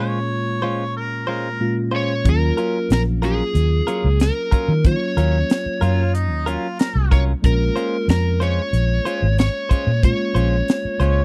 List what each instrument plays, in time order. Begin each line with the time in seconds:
Already playing: tine electric piano A#2 G#3 A#3 C#4 F4, clean electric guitar C5
0.00 clean electric guitar G#3 C#4 F4, harmonica C#5
0.62 clean electric guitar G#3 C#4 F4 C5
0.97 harmonica A#4
1.27 clean electric guitar G#3 C#4 F4 C5, harmonica A#4
1.60 tine electric piano A#2 G#3 A#3 C#4 F4
1.91 clean electric guitar G#3 C#4 F4 C5
1.96 electric slide guitar C#5
2.24 fingered electric bass D#2, tine electric piano F#3 A#3 C#4 F4, kick, closed hi-hat
2.29 electric slide guitar A#4
2.57 clean electric guitar F#3 C#4 F4 A#4, closed hi-hat
2.90 fingered electric bass A#1, electric slide guitar A#4, snare, closed hi-hat
3.22 clean electric guitar F#3 C#4 F4 A#4, electric slide guitar G#4, closed hi-hat
3.55 fingered electric bass D#2, closed hi-hat
3.87 clean electric guitar F#3 C#4 F4 A#4, closed hi-hat
4.04 fingered electric bass C#2
4.20 electric slide guitar A#4, snare, closed hi-hat
4.51 clean electric guitar F#3 C#4 F4 A#4, muted fingered electric bass stroke, kick, closed hi-hat
4.68 fingered electric bass D#3
4.84 tine electric piano F#3 A#3 C#4 F4, electric slide guitar C#5, kick, closed hi-hat
5.17 fingered electric bass D#2, clean electric guitar F#3 C#4 F4 A#4, closed hi-hat
5.50 snare, closed hi-hat
5.66 muted fingered electric bass stroke
5.81 fingered electric bass F#2, clean electric guitar F#3 C#4 F4 A#4, harmonica F4, closed hi-hat
6.14 harmonica D#4, closed hi-hat
6.30 fingered electric bass D#2
6.46 clean electric guitar F#3 C#4 F4 A#4, harmonica F4, closed hi-hat
6.79 harmonica A#4, snare, closed hi-hat
6.95 fingered electric bass C2
7.11 clean electric guitar F#3 C#4 F4 A#4, electric slide guitar C#5, kick, closed hi-hat
7.42 fingered electric bass A#1, tine electric piano G#3 A#3 C#4 F4, electric slide guitar A#4, kick, closed hi-hat
7.76 clean electric guitar G#3 C#4 F4 C5, closed hi-hat
8.08 fingered electric bass F2, electric slide guitar A#4, snare, closed hi-hat
8.40 clean electric guitar G#3 C#4 F4 C5, electric slide guitar C#5, closed hi-hat
8.73 fingered electric bass A#1, closed hi-hat
9.05 clean electric guitar G#3 C#4 F4 C5, closed hi-hat
9.22 fingered electric bass G#1
9.38 electric slide guitar C#5, snare, closed hi-hat
9.69 clean electric guitar G#3 C#4 F4 C5, muted fingered electric bass stroke, kick, closed hi-hat
9.87 fingered electric bass A#2
10.02 tine electric piano G#3 A#3 C#4 F4, electric slide guitar C#5, kick, closed hi-hat
10.35 fingered electric bass A#1, clean electric guitar G#3 C#4 F4 C5, closed hi-hat
10.68 snare, closed hi-hat
10.85 muted fingered electric bass stroke
11.00 fingered electric bass C#2, clean electric guitar G#3 C#4 F4 C5, harmonica C#5, closed hi-hat